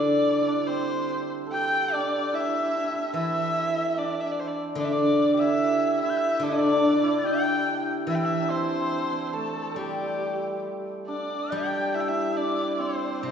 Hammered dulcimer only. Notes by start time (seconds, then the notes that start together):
Already playing: G3 D4 E4
0.41 E4
0.48 D4
0.68 C4
1.47 A4
1.53 G4
1.94 D4
2.33 E4
2.40 E4
2.48 E4
2.56 E4
2.61 E4
2.68 E4
2.75 E4
2.84 E4
2.91 E4
2.99 E4
3.16 E4
3.97 D4
4.78 D4
4.92 D4
5.34 G4
5.41 E4
6.03 E4
6.43 D4
6.51 D4
6.56 D4
6.66 D4
6.72 D4
6.81 D4
6.86 D4
6.93 D4
7.03 E4
7.24 G4
8.08 E4
8.22 E4
8.41 D4
8.49 C4
9.11 C4
9.33 A3
9.76 G3
11.08 D4
11.52 G4
11.95 E4
12.09 E4
12.37 D4
12.79 C4
13.22 C4